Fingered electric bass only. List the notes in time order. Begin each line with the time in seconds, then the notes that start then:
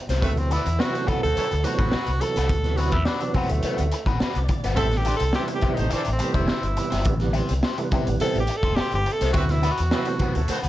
0.09 C2
0.23 D2
0.66 E2
1.08 muted fingered electric bass stroke
1.24 D2
1.37 muted fingered electric bass stroke
1.53 D2
1.79 A1
1.93 muted fingered electric bass stroke
2.08 C2
2.37 C2
2.50 D2
2.93 E2
3.35 muted fingered electric bass stroke
3.51 D2
3.63 muted fingered electric bass stroke
3.79 D2
4.07 A1
4.21 muted fingered electric bass stroke
4.36 C2
4.64 G1
4.77 A1
5.21 C2
5.63 muted fingered electric bass stroke
5.79 A1
5.93 muted fingered electric bass stroke
6.08 A1
6.35 E1
6.50 muted fingered electric bass stroke
6.63 G1
6.93 G1
7.06 A1
7.51 C2
7.92 muted fingered electric bass stroke
8.08 A1
8.21 muted fingered electric bass stroke
8.36 A1
8.63 E1
8.78 muted fingered electric bass stroke
8.93 G1
9.21 C2
9.35 D2
9.80 E2
10.20 muted fingered electric bass stroke
10.36 D2
10.49 muted fingered electric bass stroke
10.64 D2